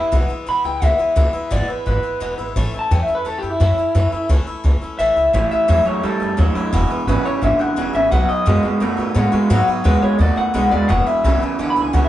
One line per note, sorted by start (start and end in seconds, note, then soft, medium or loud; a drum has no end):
0.00 0.11 E3 soft
0.00 0.11 G#3 soft
0.00 0.12 B3 medium
0.00 0.12 E4 medium
0.00 0.13 E4 loud
0.12 0.25 B1 medium
0.12 0.30 E2 medium
0.12 0.30 B2 medium
0.12 0.29 E3 medium
0.12 0.29 G#3 medium
0.12 0.28 B3 medium
0.12 0.27 E4 medium
0.28 0.45 E3 soft
0.28 0.46 G#3 medium
0.28 0.47 B3 medium
0.28 0.47 E4 medium
0.28 muted upright bass stroke medium
0.47 0.60 B1 medium
0.47 0.65 E3 medium
0.47 0.64 G#3 medium
0.47 0.64 B3 medium
0.47 0.63 E4 medium
0.47 0.65 B5 loud
0.64 0.77 C#2 medium
0.64 0.81 E3 soft
0.64 0.81 G#3 soft
0.64 0.82 B3 soft
0.64 0.82 E4 soft
0.64 0.84 G5 loud
0.82 0.94 C#2 medium
0.82 0.99 E2 medium
0.82 1.00 B2 medium
0.82 0.99 E3 medium
0.82 0.99 G#3 medium
0.82 0.98 B3 medium
0.82 0.97 E4 medium
0.82 1.51 E5 medium
0.98 1.16 E3 soft
0.98 1.16 G#3 medium
0.98 1.16 B3 medium
0.98 1.16 E4 medium
1.16 1.29 C#2 loud
1.16 1.34 E2 medium
1.16 1.34 B2 medium
1.16 1.34 E3 medium
1.16 1.34 G#3 medium
1.16 1.33 B3 medium
1.16 1.32 E4 medium
1.33 1.50 E3 soft
1.33 1.50 G#3 medium
1.33 1.50 B3 medium
1.33 1.51 E4 medium
1.33 muted upright bass stroke medium
1.51 1.64 G#1 medium
1.51 1.69 E2 medium
1.51 1.69 B2 medium
1.51 1.69 E3 medium
1.51 1.68 G#3 medium
1.51 1.68 B3 medium
1.51 1.67 E4 loud
1.51 1.70 D5 medium
1.68 1.85 E3 soft
1.68 1.85 G#3 soft
1.68 1.86 B3 soft
1.68 1.86 E4 medium
1.68 1.86 B4 medium
1.68 muted upright bass stroke medium
1.86 1.99 G#1 medium
1.86 2.04 E3 medium
1.86 2.03 G#3 medium
1.86 2.03 B3 medium
1.86 2.02 E4 medium
1.86 2.54 B4 loud
2.03 2.20 E3 soft
2.03 2.20 G#3 soft
2.03 2.20 B3 soft
2.03 2.21 E4 soft
2.03 muted upright bass stroke medium
2.20 2.33 E1 medium
2.20 2.38 E2 medium
2.20 2.39 B2 medium
2.20 2.39 E3 medium
2.20 2.38 G#3 medium
2.20 2.38 B3 medium
2.20 2.37 E4 medium
2.38 2.51 G#1 medium
2.38 2.55 E3 soft
2.38 2.56 G#3 medium
2.38 2.56 B3 medium
2.38 2.56 E4 medium
2.56 2.68 A1 medium
2.56 2.73 A2 medium
2.56 2.73 E3 medium
2.56 2.74 A3 medium
2.56 2.73 C#4 medium
2.56 2.73 E4 loud
2.73 2.90 A3 soft
2.73 2.91 C#4 soft
2.73 2.91 E4 medium
2.73 muted upright bass stroke medium
2.79 2.92 A5 loud
2.91 3.03 E2 loud
2.91 3.08 A2 medium
2.91 3.09 E3 medium
2.91 3.08 A3 medium
2.91 3.08 C#4 medium
2.91 3.07 E4 medium
2.91 3.03 G5 loud
3.03 3.14 E5 medium
3.08 3.24 A3 soft
3.08 3.25 C#4 soft
3.08 3.26 E4 medium
3.08 muted upright bass stroke medium
3.15 3.26 B4 medium
3.25 3.38 E2 medium
3.25 3.43 E3 medium
3.25 3.43 A3 medium
3.25 3.43 C#4 medium
3.25 3.42 E4 medium
3.25 3.37 A4 loud
3.38 3.50 G4 medium
3.43 3.55 F#2 medium
3.43 3.60 A3 soft
3.43 3.60 C#4 soft
3.43 3.60 E4 medium
3.50 3.61 E4 loud
3.60 3.73 F#2 loud
3.60 3.78 A2 medium
3.60 3.78 E3 medium
3.60 3.78 A3 medium
3.60 3.77 C#4 medium
3.60 3.77 E4 medium
3.60 4.29 E4 medium
3.77 3.94 A3 soft
3.77 3.95 C#4 medium
3.77 3.95 E4 medium
3.77 muted upright bass stroke medium
3.95 4.07 F#2 loud
3.95 4.12 A2 medium
3.95 4.12 E3 medium
3.95 4.13 A3 medium
3.95 4.12 C#4 medium
3.95 4.11 E4 medium
4.12 4.29 A3 medium
4.12 4.29 C#4 soft
4.12 4.29 E4 medium
4.12 muted upright bass stroke medium
4.29 4.42 C#2 medium
4.29 4.47 A2 medium
4.29 4.47 E3 medium
4.29 4.47 A3 loud
4.29 4.46 C#4 medium
4.29 4.46 E4 loud
4.47 4.63 A3 soft
4.47 4.64 C#4 medium
4.47 4.64 E4 medium
4.47 muted upright bass stroke medium
4.64 4.77 C#2 medium
4.64 4.82 E3 medium
4.64 4.82 A3 medium
4.64 4.82 C#4 medium
4.64 4.80 E4 medium
4.82 4.99 A3 soft
4.82 4.99 C#4 medium
4.82 4.99 E4 medium
4.82 muted upright bass stroke medium
4.99 5.12 A1 loud
4.99 5.16 A2 medium
4.99 5.17 E3 medium
4.99 5.17 A3 medium
4.99 5.16 C#4 medium
4.99 5.15 E4 medium
4.99 5.50 E5 loud
5.16 5.29 C#2 medium
5.16 5.33 A3 medium
5.16 5.33 C#4 soft
5.16 5.34 E4 medium
5.33 5.46 A1 loud
5.33 5.51 A2 medium
5.33 5.65 A2 medium
5.33 5.51 E3 medium
5.33 5.66 E3 loud
5.33 5.52 A3 medium
5.33 5.51 C#4 medium
5.33 5.50 E4 medium
5.51 5.68 A3 soft
5.51 5.68 C#4 medium
5.51 5.68 E4 medium
5.51 5.68 E5 loud
5.51 muted upright bass stroke medium
5.68 5.81 E2 medium
5.68 5.86 A2 medium
5.68 5.84 A2 loud
5.68 5.86 E3 medium
5.68 5.85 F#3 loud
5.68 5.86 A3 medium
5.68 5.86 C#4 medium
5.68 5.84 E4 medium
5.68 5.86 E5 loud
5.85 6.01 A2 medium
5.85 6.02 F#3 loud
5.85 6.03 A3 soft
5.85 6.04 C#4 soft
5.85 6.03 E4 medium
5.85 6.03 C#5 loud
5.85 muted upright bass stroke medium
6.03 6.16 E2 medium
6.03 6.35 A2 loud
6.03 6.21 E3 medium
6.03 6.35 G3 medium
6.03 6.21 A3 medium
6.03 6.20 C#4 medium
6.03 6.19 E4 medium
6.03 6.37 A4 loud
6.20 6.34 F#2 medium
6.20 6.37 A3 soft
6.20 6.37 C#4 medium
6.20 6.37 E4 medium
6.37 6.51 D#2 loud
6.37 6.55 A2 medium
6.37 6.53 A2 medium
6.37 6.55 E3 medium
6.37 6.54 F#3 loud
6.37 6.55 A3 medium
6.37 6.55 C#4 medium
6.37 6.54 E4 medium
6.55 6.71 A2 medium
6.55 6.71 F#3 medium
6.55 6.73 A3 medium
6.55 6.73 C#4 medium
6.55 6.73 E4 medium
6.55 muted upright bass stroke medium
6.72 6.85 E1 loud
6.72 7.04 E2 medium
6.72 6.90 E2 medium
6.72 7.04 B2 loud
6.72 6.90 B2 loud
6.72 6.90 E3 medium
6.72 6.90 G#3 medium
6.72 6.89 B3 loud
6.72 6.89 E4 loud
6.90 7.07 E3 soft
6.90 7.08 G#3 soft
6.90 7.08 B3 medium
6.90 7.07 E4 medium
6.90 muted upright bass stroke medium
7.07 7.20 G#1 medium
7.07 7.23 E2 medium
7.07 7.25 E2 medium
7.07 7.25 B2 medium
7.07 7.23 C#3 loud
7.07 7.25 E3 medium
7.07 7.25 G#3 medium
7.07 7.25 B3 medium
7.07 7.24 E4 medium
7.07 7.24 B4 medium
7.25 7.41 E2 medium
7.25 7.41 C#3 medium
7.25 7.40 E3 soft
7.25 7.41 G#3 soft
7.25 7.42 B3 soft
7.25 7.42 E4 soft
7.25 7.43 C#5 loud
7.25 muted upright bass stroke medium
7.42 7.55 G#1 medium
7.42 7.74 E2 medium
7.42 7.74 D3 loud
7.42 7.59 E3 medium
7.42 7.59 G#3 medium
7.42 7.59 B3 medium
7.42 7.58 E4 medium
7.42 7.60 E5 loud
7.59 7.76 E3 soft
7.59 7.76 G#3 soft
7.59 7.76 B3 soft
7.59 7.76 E4 medium
7.59 7.93 F#5 loud
7.59 muted upright bass stroke medium
7.76 7.90 E1 medium
7.76 7.94 E2 medium
7.76 7.93 E2 medium
7.76 7.94 B2 medium
7.76 7.93 C#3 medium
7.76 7.94 E3 medium
7.76 7.94 G#3 medium
7.76 7.93 B3 medium
7.76 7.92 E4 medium
7.93 8.07 G#1 medium
7.93 8.10 E2 medium
7.93 8.10 C#3 medium
7.93 8.12 E3 medium
7.93 8.12 G#3 medium
7.93 8.11 B3 medium
7.93 8.11 E4 medium
7.93 8.11 E5 loud
8.12 8.24 B1 loud
8.12 8.29 B2 medium
8.12 8.43 B2 medium
8.12 8.29 F#3 medium
8.12 8.44 F#3 loud
8.12 8.29 B3 medium
8.12 8.28 D#4 medium
8.12 8.28 F#4 medium
8.12 8.28 F#5 loud
8.29 8.45 B3 soft
8.29 8.46 D#4 soft
8.29 8.46 F#4 medium
8.29 8.63 D#5 loud
8.29 muted upright bass stroke medium
8.46 8.59 F#2 loud
8.46 8.63 B2 medium
8.46 8.64 F#3 medium
8.46 8.63 G#3 loud
8.46 8.64 B3 medium
8.46 8.63 D#4 medium
8.46 8.61 F#4 loud
8.63 8.80 B2 medium
8.63 8.80 G#3 medium
8.63 8.80 B3 soft
8.63 8.81 D#4 soft
8.63 8.81 F#4 medium
8.63 muted upright bass stroke medium
8.80 8.93 F#2 medium
8.80 9.12 B2 medium
8.80 8.98 F#3 medium
8.80 9.13 A3 loud
8.80 8.98 B3 medium
8.80 8.97 D#4 medium
8.80 8.96 F#4 medium
8.97 9.11 G#2 medium
8.97 9.14 B3 medium
8.97 9.15 D#4 medium
8.97 9.15 F#4 medium
9.15 9.28 A2 loud
9.15 9.33 B2 medium
9.15 9.32 B2 medium
9.15 9.33 F#3 medium
9.15 9.32 G#3 medium
9.15 9.33 B3 medium
9.15 9.32 D#4 medium
9.15 9.31 F#4 medium
9.32 9.49 B2 medium
9.32 9.49 G#3 medium
9.32 9.49 B3 medium
9.32 9.50 D#4 medium
9.32 9.50 F#4 medium
9.32 muted upright bass stroke medium
9.50 9.63 G#2 loud
9.50 9.68 B2 medium
9.50 9.82 B2 medium
9.50 9.68 F#3 loud
9.50 9.82 F#3 loud
9.50 9.68 B3 loud
9.50 9.68 D#4 loud
9.50 9.67 F#4 loud
9.68 9.84 B3 medium
9.68 9.84 D#4 medium
9.68 9.84 F#4 medium
9.68 muted upright bass stroke medium
9.84 9.97 D#2 medium
9.84 10.02 B2 medium
9.84 10.01 B2 medium
9.84 10.02 F#3 medium
9.84 10.01 G#3 loud
9.84 10.02 B3 medium
9.84 10.01 D#4 medium
9.84 10.00 F#4 loud
9.84 10.02 B4 loud
10.02 10.18 B2 medium
10.02 10.18 G#3 medium
10.02 10.18 B3 soft
10.02 10.19 D#4 soft
10.02 10.19 F#4 medium
10.02 10.19 C#5 loud
10.02 muted upright bass stroke medium
10.19 10.32 D#2 medium
10.19 10.51 B2 medium
10.19 10.37 F#3 medium
10.19 10.52 A3 loud
10.19 10.37 B3 medium
10.19 10.36 D#4 medium
10.19 10.35 F#4 medium
10.19 10.36 D5 loud
10.36 10.53 B3 soft
10.36 10.53 D#4 soft
10.36 10.54 F#4 soft
10.36 10.71 F#5 loud
10.36 muted upright bass stroke medium
10.54 10.67 B1 loud
10.54 10.71 B2 medium
10.54 10.70 B2 medium
10.54 10.72 F#3 medium
10.54 10.70 G#3 medium
10.54 10.72 B3 medium
10.54 10.71 D#4 medium
10.54 10.70 F#4 loud
10.71 10.84 D#2 medium
10.71 10.88 B2 medium
10.71 10.88 G#3 medium
10.71 10.89 B3 soft
10.71 10.89 D#4 medium
10.71 10.89 F#4 medium
10.71 10.88 D5 loud
10.88 11.02 E1 loud
10.88 11.06 E2 medium
10.88 11.20 E2 medium
10.88 11.06 B2 medium
10.88 11.21 B2 loud
10.88 11.07 E3 medium
10.88 11.07 G#3 medium
10.88 11.06 B3 medium
10.88 11.05 E4 medium
10.88 11.06 F#5 medium
11.06 11.24 E3 soft
11.06 11.24 G#3 soft
11.06 11.24 B3 medium
11.06 11.24 E4 medium
11.06 11.40 E5 loud
11.06 muted upright bass stroke medium
11.24 11.36 B1 medium
11.24 11.39 E2 loud
11.24 11.41 E2 medium
11.24 11.42 B2 medium
11.24 11.40 C#3 loud
11.24 11.42 E3 medium
11.24 11.42 G#3 medium
11.24 11.41 B3 medium
11.24 11.40 E4 medium
11.41 11.57 E2 medium
11.41 11.57 C#3 medium
11.41 11.57 E3 soft
11.41 11.58 G#3 soft
11.41 11.59 B3 medium
11.41 11.59 E4 soft
11.41 muted upright bass stroke medium
11.59 11.71 B1 medium
11.59 11.90 E2 medium
11.59 11.90 D3 loud
11.59 11.76 E3 medium
11.59 11.76 G#3 medium
11.59 11.76 B3 medium
11.59 11.75 E4 medium
11.70 11.81 B5 loud
11.76 11.89 C#2 medium
11.76 11.93 E3 soft
11.76 11.93 G#3 soft
11.76 11.93 B3 medium
11.76 11.93 E4 medium
11.82 11.93 G#5 loud
11.93 12.06 C#2 loud
11.93 12.09 E2 medium
11.93 12.09 B2 medium
11.93 12.09 C#3 medium
11.93 12.09 E3 medium
11.93 12.09 G#3 medium
11.93 12.09 B3 medium
11.93 12.09 E4 medium
11.93 12.04 F#5 medium
12.05 12.09 E5 loud